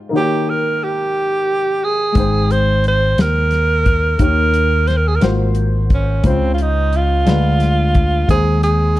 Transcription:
Already playing: G#2 G#3 D#4 G4 C5
0.09 D#3 A#3 D#4
0.14 F#4 G4 C#5
0.20 G5
0.50 A#4
0.84 G4
1.84 G#4
2.12 G#1 G#3 D#4, kick, closed hi-hat
2.16 G#2 C5 G5
2.50 C5, closed hi-hat
2.84 closed hi-hat
2.88 C5
3.18 D#2 A#4, snare, closed hi-hat
3.51 snare, closed hi-hat
3.86 kick, closed hi-hat
4.18 D#2 D#3 A#3 D#4 G4 C#5, kick, closed hi-hat
4.24 A#4
4.54 closed hi-hat
4.88 C5, snare, closed hi-hat
4.97 A#4
5.08 G#4
5.16 A#3 A#4
5.21 G#1 G#2 F4 F#4 C5, snare, closed hi-hat
5.55 closed hi-hat
5.90 kick, closed hi-hat
5.94 C#4
6.23 C#2 C#3 G#3 C#4 F4 C5, kick, closed hi-hat
6.28 C4
6.54 F4
6.58 D#4, closed hi-hat
6.93 closed hi-hat
6.97 F4
7.25 D2 D3 G#3 D4 F4 B4, snare, closed hi-hat
7.60 snare, closed hi-hat
7.95 kick, closed hi-hat
8.27 D#2 D#3 G#3 D#4 G#4 C5, kick, closed hi-hat
8.63 G#4, closed hi-hat
8.97 closed hi-hat

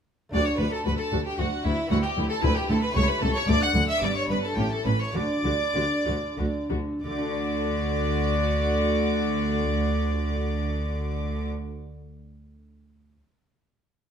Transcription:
0.29 A3 D4 F#4
0.33 D2 F#4 D5 D6
0.46 C#5 C#6
0.57 D2 F#4 B4 B5
0.72 A4 A5
0.85 D2 F#4 B4 B5
0.98 A4 A5
1.12 D2 F#4
1.25 G4 G5
1.38 D2 F#4 F#5
1.64 D2 E4 F#4 E5
1.86 B3 E4 G4
1.91 D2 E4 F#4 F#5
2.03 G4 G5
2.17 D2 E4
2.29 A4 A5
2.42 D2 E4 B4 B5
2.55 G4 G5
2.68 D2 E4 A4 A5
2.80 B4 B5
2.90 A3 E4 G4 C#6
2.95 C#2 A3 C#5
3.07 B4 B5
3.21 C#2 A3 A4 A5
3.33 C#5 C#6
3.42 A3 D4 F#4
3.47 D2 A3 D5 D6
3.61 F#5 F#6
3.74 D2 A3
3.88 E5 E6
3.98 G1 G2 B3 D4 G4 D6
4.02 G2 B3 D5
4.14 C#5 C#6
4.18 C#5
4.28 G1 G2 B3 B4 B5
4.43 A4 A5
4.52 A3 C#4 E4 G5
4.57 A1 A2 C#4 G4
4.71 A4 A5
4.85 A1 A2 C#4 B4 B5
5.00 C#5 C#6
5.10 D2 A3 D4 F#4
5.14 D3 F#4 D5 D6
5.44 D2 D3 F#4
5.75 D2 D3 F#4
6.05 D2 D3 F#4
6.37 D2 D3 F#4
6.70 D2 D3 F#4
7.02 D2 D3 F#4 D5 D6
7.11 A3
7.18 D4
7.25 F#4
7.32 D5

